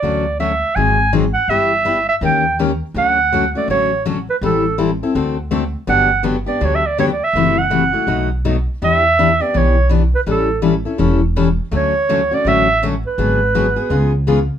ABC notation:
X:1
M:4/4
L:1/16
Q:"Swing" 1/4=164
K:D
V:1 name="Clarinet"
d4 e4 ^g4 z2 f2 | e6 e2 g4 z4 | f6 d2 c4 z2 B2 | A4 z12 |
f4 z2 d2 (3c2 e2 d2 (3c2 d2 e2- | e2 f8 z6 | e6 d2 c4 z2 B2 | A4 z12 |
c6 d2 e4 z2 B2- | B8- B2 z6 |]
V:2 name="Steel-string acoustic guitar"
[D,F,A,CF]2 z2 [D,F,A,CF] z3 [^D,F,^B,^D^G]2 z2 [D,F,B,DG] z3 | [G,B,EG]2 z2 [G,B,EG] z3 [_E,_B,_DG_B]2 z2 [E,B,DGB] z3 | [D,F,A,CF]2 z2 [D,F,A,CF] z [A,CF]2 [D,F,A,CF]2 z2 [D,F,A,CF] z3 | [E,G,=CEA]2 z2 [E,G,CEA] z [CEA]2 [D,A,CFA]2 z2 [D,A,CFA] z3 |
[D,F,B,DG]2 z2 [D,F,B,DG] z [B,DG]2 [D,F,B,DG]2 z2 [D,F,B,DG] z3 | [=C,E,A,EF]2 z2 [C,E,A,EF] z [A,EF]2 [B,,F,A,^DF]2 z2 [B,,F,A,DF] z3 | [E,B,DG]2 z2 [E,B,DG] z [B,DG]2 [E,B,DG]2 z2 [E,B,DG] z3 | [E,G,CEA]2 z2 [E,G,CEA] z [CEA]2 [E,G,CEA]2 z2 [E,G,CEA] z3 |
[D,F,A,CF]2 z2 [D,F,A,CF] z [A,CF]2 [D,F,A,CF]2 z2 [D,F,A,CF] z3 | [D,F,B,F^G]2 z2 [D,F,B,FG] z [B,FG]2 [C,^G,B,^EG]2 z2 [C,G,B,EG] z3 |]
V:3 name="Upright bass" clef=bass
D,,8 ^G,,,8 | G,,,8 _E,,8 | D,,8 A,,,8 | A,,,8 D,,8 |
G,,,8 D,,8 | F,,,8 B,,,8 | E,,8 B,,,8 | A,,,8 E,,,8 |
D,,8 A,,,8 | ^G,,,8 C,,8 |]